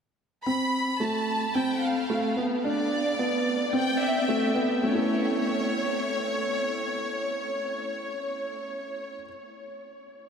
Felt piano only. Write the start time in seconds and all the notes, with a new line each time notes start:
0.46 C4
1.00 A3
1.55 C4
2.10 A3
2.37 B3
2.64 D4
3.19 B3
3.73 C4
4.28 A3
4.55 B3
4.83 A3
4.88 C#4
4.92 E4 A4